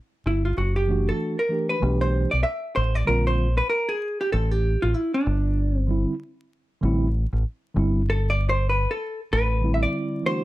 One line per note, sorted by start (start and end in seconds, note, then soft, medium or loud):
0.26 0.52 G1 medium
0.26 0.44 E4 medium
0.45 0.57 F4 medium
0.58 1.09 F#1 medium
0.58 0.76 F#4 medium
0.76 1.08 G4 medium
0.87 1.34 E3 medium
0.87 1.35 A3 medium
0.87 1.36 D4 medium
0.87 1.36 F#4 medium
1.09 1.39 A4 medium
1.39 1.68 A#4 medium
1.49 1.74 E3 medium
1.49 1.75 A3 medium
1.49 1.75 D4 medium
1.49 1.76 G4 medium
1.69 2.01 B4 medium
1.80 2.24 B1 loud
1.80 2.28 E3 medium
1.80 2.28 A3 medium
1.80 2.29 D4 medium
1.80 2.29 G4 medium
2.01 2.30 C5 loud
2.31 2.43 B1 medium
2.31 2.43 D5 medium
2.43 2.75 E5 loud
2.76 3.03 A1 medium
2.76 2.95 C5 medium
2.95 3.07 D5 loud
3.05 3.60 A#1 loud
3.05 3.45 D3 medium
3.05 3.45 G3 medium
3.05 3.46 C4 medium
3.05 3.47 F4 medium
3.05 3.25 A#4 medium
3.27 3.57 C5 medium
3.58 3.69 B4 medium
3.70 3.89 A#4 medium
3.89 4.18 G#4 medium
4.21 4.32 G4 medium
4.32 4.75 A1 loud
4.32 4.51 A4 medium
4.51 4.84 G4 medium
4.82 4.93 A1 medium
4.82 4.94 F4 medium
4.94 5.14 E4 medium
5.14 5.78 D4 medium
5.27 6.04 G1 loud
5.78 6.04 C4 medium
5.87 6.12 D3 medium
5.87 6.12 G3 medium
5.87 6.13 C4 medium
5.87 6.14 E4 medium
6.81 7.25 A1 loud
6.81 7.06 D3 medium
6.81 7.07 G3 medium
6.81 7.07 C4 medium
6.81 7.08 E4 loud
7.33 7.43 A1 medium
7.74 8.85 G1 loud
7.74 7.99 D3 medium
7.74 8.00 G3 medium
7.74 8.01 C4 medium
7.78 8.01 E4 loud
8.10 8.30 A4 medium
8.30 8.49 D5 loud
8.49 8.69 C5 loud
8.69 8.91 B4 medium
8.91 9.20 A4 medium
9.33 9.84 A1 loud
9.33 9.74 B4 loud
9.61 10.44 D3 medium
9.61 10.44 G3 medium
9.61 10.44 C4 medium
9.61 10.44 E4 medium
9.74 9.82 E5 medium
9.83 10.26 D5 medium
10.23 10.44 E3 medium
10.23 10.44 A3 medium
10.23 10.44 D4 medium
10.23 10.44 F#4 medium
10.23 10.44 C5 loud